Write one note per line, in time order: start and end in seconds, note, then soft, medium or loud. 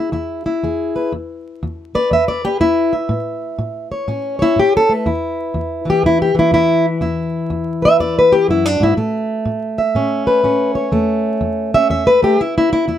0.00 0.11 E2 medium
0.00 0.12 E4 soft
0.00 0.63 G#4 medium
0.12 0.59 E2 medium
0.12 0.45 E4 soft
0.46 1.11 E4 soft
0.63 1.10 E2 medium
0.63 1.11 G#4 soft
0.96 1.11 B4 soft
1.12 1.59 E2 medium
1.63 2.08 E2 medium
1.95 2.44 B4 soft
1.95 2.12 D5 medium
2.11 2.57 E2 medium
2.11 2.28 E5 medium
2.28 2.45 D5 medium
2.45 2.60 G4 medium
2.45 3.09 B4 soft
2.60 3.06 E2 medium
2.60 2.93 E4 medium
2.93 3.91 E5 soft
3.09 3.55 A2 medium
3.58 4.04 A2 medium
3.92 4.38 C#5 soft
4.08 4.54 A2 medium
4.08 4.57 C#4 soft
4.39 4.58 E4 loud
4.39 4.93 C#5 soft
4.56 5.02 A2 medium
4.56 4.75 G4 medium
4.77 4.92 A4 medium
4.89 5.07 A3 soft
4.89 5.90 B4 medium
5.06 5.52 E2 medium
5.06 5.89 E4 soft
5.54 6.00 E2 medium
5.85 6.34 E3 soft
5.90 6.05 G4 medium
6.03 6.49 E2 medium
6.03 6.21 E4 loud
6.22 6.38 G4 medium
6.35 8.66 E3 soft
6.39 6.53 E4 medium
6.51 6.98 E2 medium
6.51 6.85 E4 loud
7.01 7.47 E2 medium
7.01 8.32 E4 soft
7.50 7.96 E2 medium
7.82 8.16 B4 soft
7.82 8.00 E5 loud
8.00 8.46 E2 medium
8.00 8.16 D5 medium
8.19 8.34 B4 medium
8.32 8.49 G4 medium
8.48 8.80 F#2 medium
8.48 8.66 E4 medium
8.66 8.82 D4 medium
8.80 8.97 G#2 medium
8.80 8.97 E4 medium
8.97 9.43 A2 medium
8.97 10.91 A3 medium
9.46 9.92 A2 medium
9.78 10.27 E5 medium
9.95 10.41 A2 medium
9.95 10.43 C#4 medium
10.27 10.75 B4 medium
10.44 10.90 A2 medium
10.44 11.73 C#4 soft
10.75 10.91 C#5 medium
10.92 11.38 E2 medium
10.92 12.21 A3 soft
11.41 11.87 E2 medium
11.74 12.07 C#4 soft
11.74 11.89 E5 loud
11.90 12.36 E2 medium
11.90 12.07 E5 medium
12.07 12.23 B4 loud
12.23 12.40 A3 soft
12.23 12.40 G4 loud
12.41 12.57 E4 medium
12.58 12.72 E4 medium
12.73 12.87 E4 medium
12.88 12.98 E2 medium
12.88 12.98 E4 medium